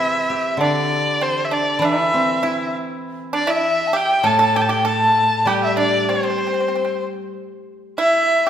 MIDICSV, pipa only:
0, 0, Header, 1, 2, 480
1, 0, Start_track
1, 0, Tempo, 607287
1, 470, Time_signature, 4, 2, 24, 8
1, 3347, Tempo, 624350
1, 6625, End_track
2, 0, Start_track
2, 0, Title_t, "Pipa"
2, 0, Program_c, 0, 105
2, 0, Note_on_c, 0, 64, 64
2, 440, Note_off_c, 0, 64, 0
2, 480, Note_on_c, 0, 62, 70
2, 924, Note_off_c, 0, 62, 0
2, 960, Note_on_c, 0, 60, 63
2, 1177, Note_off_c, 0, 60, 0
2, 1197, Note_on_c, 0, 62, 66
2, 1415, Note_off_c, 0, 62, 0
2, 1438, Note_on_c, 0, 62, 68
2, 1572, Note_off_c, 0, 62, 0
2, 1572, Note_on_c, 0, 64, 68
2, 1882, Note_off_c, 0, 64, 0
2, 1919, Note_on_c, 0, 64, 68
2, 2139, Note_off_c, 0, 64, 0
2, 2632, Note_on_c, 0, 62, 80
2, 2741, Note_off_c, 0, 62, 0
2, 2744, Note_on_c, 0, 64, 75
2, 3079, Note_off_c, 0, 64, 0
2, 3107, Note_on_c, 0, 67, 77
2, 3331, Note_off_c, 0, 67, 0
2, 3350, Note_on_c, 0, 69, 80
2, 3458, Note_off_c, 0, 69, 0
2, 3466, Note_on_c, 0, 69, 78
2, 3576, Note_off_c, 0, 69, 0
2, 3598, Note_on_c, 0, 67, 74
2, 3690, Note_off_c, 0, 67, 0
2, 3698, Note_on_c, 0, 67, 67
2, 3815, Note_off_c, 0, 67, 0
2, 3818, Note_on_c, 0, 69, 75
2, 4264, Note_off_c, 0, 69, 0
2, 4299, Note_on_c, 0, 67, 78
2, 4518, Note_off_c, 0, 67, 0
2, 4527, Note_on_c, 0, 62, 66
2, 4750, Note_off_c, 0, 62, 0
2, 4773, Note_on_c, 0, 60, 53
2, 4810, Note_off_c, 0, 60, 0
2, 4819, Note_on_c, 0, 60, 40
2, 4873, Note_off_c, 0, 60, 0
2, 4883, Note_on_c, 0, 60, 42
2, 4927, Note_off_c, 0, 60, 0
2, 4937, Note_on_c, 0, 60, 30
2, 4987, Note_off_c, 0, 60, 0
2, 4996, Note_on_c, 0, 60, 34
2, 5051, Note_off_c, 0, 60, 0
2, 5064, Note_on_c, 0, 60, 35
2, 5110, Note_off_c, 0, 60, 0
2, 5119, Note_on_c, 0, 60, 37
2, 5159, Note_off_c, 0, 60, 0
2, 5169, Note_on_c, 0, 60, 29
2, 5219, Note_off_c, 0, 60, 0
2, 5228, Note_on_c, 0, 60, 34
2, 5275, Note_off_c, 0, 60, 0
2, 5284, Note_on_c, 0, 60, 34
2, 5339, Note_off_c, 0, 60, 0
2, 5354, Note_on_c, 0, 60, 38
2, 5404, Note_off_c, 0, 60, 0
2, 6227, Note_on_c, 0, 64, 75
2, 6561, Note_off_c, 0, 64, 0
2, 6600, Note_on_c, 0, 67, 73
2, 6625, Note_off_c, 0, 67, 0
2, 6625, End_track
0, 0, End_of_file